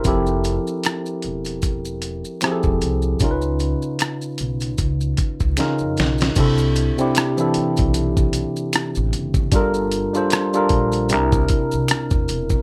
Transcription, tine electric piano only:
Already playing: A#4
0.04 F3 C4 E4 G4 A4
2.42 F3 C4 E4 G4 G#4
2.52 A4
3.21 C#3 C#4 D#4 F4 A#4
3.31 B4
5.57 C#3 C#4 D#4 F4 A#4
6.36 C3 C4 D4 E4 A4
6.97 C3 C4 D4 E4 G4
7.37 E3 C4 D4 E4 A4
9.52 G3 D4 F4 A4 A#4
10.13 G3 D4 F4 A4 C5
10.53 G3 D4 F4 A4 A#4
11.10 C3 C4 D4 E4 A#4

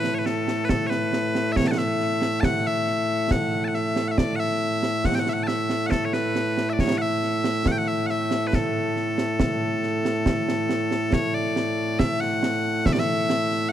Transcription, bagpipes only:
Already playing: A2 A3 B4
0.15 C#5
0.19 B4
0.26 A4
0.65 B4
0.69 A4
0.87 B4 C#5
1.52 E5
1.56 C#5
1.67 F#5 A5
1.78 E5
2.41 F#5 A5
2.67 E5
3.32 F#5
3.64 F#5 A5
3.75 E5
4.08 E5 F#5
4.18 D5
4.36 F#5
4.40 E5
5.05 F#5
5.15 G5
5.19 F#5
5.29 E5
5.33 F#5
5.43 A5
5.47 E5
5.87 F#5
5.91 A4
6.05 C#5
6.14 B4
6.70 D5 E5
6.80 C#5
6.98 F#5
7.02 E5
7.68 F#5 G5
7.78 F#5
7.88 E5
8.07 E5 F#5
8.47 B4
8.55 A4
11.13 C#5
11.34 D5
11.99 E5
12.21 F#5
12.86 E5
12.93 D5
12.99 E5
13.69 F#5

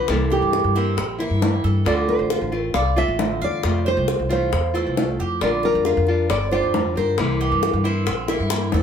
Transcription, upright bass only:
0.09 C2
0.42 G2
0.64 G2
0.97 A#1
1.30 G2
1.64 G2
1.85 D2
2.19 A1
2.41 A1
2.74 C2
3.08 A1
3.41 E2
3.64 F2
3.97 C2
4.19 C2
4.53 E2
4.87 C2
5.19 F2
5.41 A#1
5.75 F2
5.97 F2
6.30 G1
6.63 F2
6.96 G2
7.18 C2
7.52 G2
7.73 G2
8.07 A#1
8.40 G2
8.74 E2

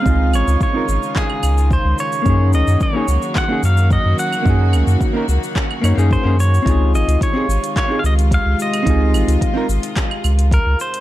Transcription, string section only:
Already playing: C#3 D#3 G#3 D#4 F4
2.26 F#3 A#3 F#4
6.66 C3 G#3 F4

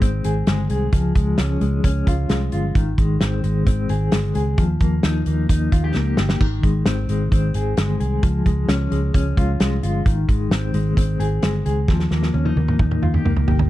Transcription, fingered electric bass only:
0.02 G#1
0.25 G#1
0.47 G1
0.70 C2
0.93 C#2
1.16 C#2
1.39 C#2
1.61 C#2
1.84 C#2
2.07 C#2
2.30 C2
2.53 G1
2.75 G#1
2.98 G#1
3.21 G#1
3.44 G#1
3.67 G#1
3.90 G#1
4.13 G1
4.35 C#2
4.58 D#2
4.81 D#2
5.04 D#2
5.26 D#2
5.49 D#2
5.72 D#2
5.95 C#2
6.18 G1
6.41 G#1
6.64 G#1
6.86 G#1
7.09 G#1
7.32 G#1
7.55 G#1
7.77 G1
8.00 C2
8.23 C#2
8.46 C#2
8.68 C#2
8.92 C#2
9.14 C#2
9.37 C#2
9.60 C2
9.83 G1
10.06 G#1
10.29 G#1
10.51 G#1
10.74 G#1
10.97 G#1
11.20 G#1
11.43 G1
11.66 C#2
11.88 D#2
12.11 D#2
12.34 D#2
12.56 D#2
12.79 D#2
13.02 D#2
13.25 C#2
13.48 G1

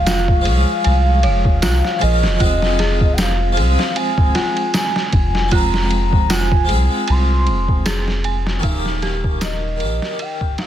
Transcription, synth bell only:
Already playing: F4
0.07 F4
0.84 G#5
1.23 C#5
1.62 F4
2.01 G#5
2.40 F4
2.80 G#4
3.96 G#5
4.35 F4
5.52 F4
6.30 F4
7.08 G#5
7.86 G#4
8.25 G#5
8.64 D#4
9.03 G4
10.19 D#5
10.58 D#4

